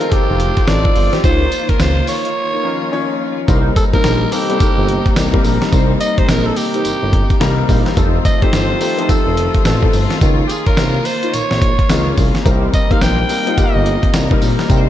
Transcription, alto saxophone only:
Already playing: A#4
0.12 G4
0.69 D5
1.24 C5
1.70 A#4
1.81 C5
2.08 C#5
3.77 A4
3.94 A#4
4.33 G4
6.01 D#5
6.19 C5
6.29 A#4
6.46 A4
6.57 G4
8.26 D#5
8.43 C5
9.10 A4
9.66 A4
10.47 G4 G#4
10.67 A#4
11.06 C5
11.34 C#5
12.75 D#5
12.92 F5
13.02 G5
13.58 D#5

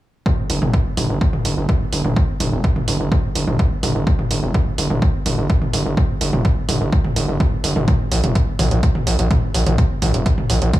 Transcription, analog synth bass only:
0.50 G1
0.62 F1
0.97 G1
1.09 G1
1.45 G1
1.57 G1
1.93 G1
2.05 G1
2.40 G1
2.52 F1
2.88 G1
3.00 G1
3.35 G1
3.48 G1
3.83 G1
3.95 G1
4.31 G1
4.43 F1
4.78 G1
4.90 G1
5.26 G1
5.38 G1
5.73 G1
5.86 G1
6.21 G1
6.33 F1
6.69 G1
6.81 G1
7.16 G1
7.28 G1
7.64 G1
7.76 G1
8.12 A#1
8.24 F1
8.59 A#1
8.71 A#1
9.07 A#1
9.19 A#1
9.54 A#1
9.67 A#1
10.02 A#1
10.14 F1
10.50 A#1
10.62 A#1

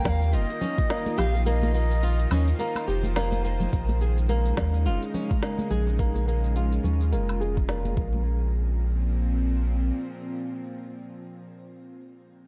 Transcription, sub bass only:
0.05 D#2
0.34 F1
1.18 A#1
2.31 D#2
2.88 F1
3.73 A#1
4.58 D#2
4.86 F1
5.71 A#1
6.84 D#2
7.12 F1
7.97 A#1

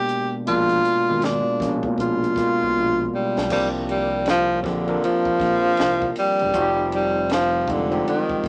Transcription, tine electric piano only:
Already playing: B2 G#3 A#3 B3 D4
0.46 B2 G#3 A#3 D4
1.08 B2 G#3 A#3 F4
1.60 B2 G#3 A#3 C#4
1.68 D4
2.36 B2 G#3 A#3 F4
3.50 F3 A#3 C4 D4 G4
4.64 F3 A#3 C4 D4 G4
4.87 F3 A#3 C4 D4 A#4
6.54 F3 G3 C4 D#4 F#4
6.62 G4
7.68 F3 G#3 C4 D#4 F4
7.91 F3 G#3 C4 D#4 G4

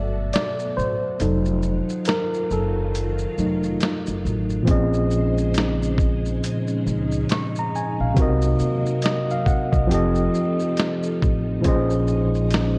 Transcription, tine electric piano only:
Already playing: D5 E5
0.34 D5
0.77 C5
1.20 F#3 D#4 A4
2.08 A#4
2.53 A4
3.39 F#3 A3 D#4
4.63 A#2 F3 C4
4.68 C#4 G#4 D#5
7.31 C#6
7.59 A#5
7.75 G#5
8.01 F5
8.14 C3 C4 F#4
8.20 A#4 D#5
9.04 D#5
9.31 F5
9.46 F#5
9.72 D#5
9.87 F3 C4 G4
9.93 A4 D#5
11.61 A#2 F3 C#4
11.65 G#4 C5 D#5

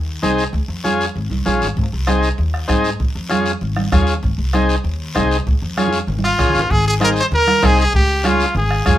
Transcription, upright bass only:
Already playing: D#2
0.23 C2
0.53 C#2
0.68 F2
1.16 G#1
1.30 C2
1.46 A#1
1.62 G#1
1.77 G#1
1.93 C2
2.38 D#2
2.69 G#2
3.00 C#2
3.15 F2
3.61 G#1
3.92 D#2
4.23 G#1
4.38 C2
4.84 D#2
5.16 C2
5.47 C#2
5.62 F2
6.07 G#1
6.39 A#1
6.55 G#1
6.71 G#1
7.31 D#2
7.63 C2
7.94 C#2
8.55 G#1
8.86 F2

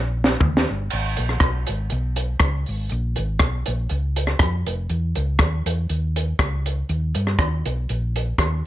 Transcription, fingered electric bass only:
Already playing: A#1
0.41 D#2
0.71 G1
0.93 G#1
1.19 A#1
1.41 B1
1.69 G#1
1.92 B1
2.41 C#2
2.69 G#1
2.92 A#1
3.18 G#1
3.40 B1
3.68 A#1
3.91 C#2
4.40 F2
4.67 F1
4.90 E2
5.17 C#2
5.40 D#2
5.66 E2
5.90 D#2
6.40 C#2
6.89 D#2
7.15 G2
7.39 D#2
7.66 B1
7.90 A#1
8.38 D#2

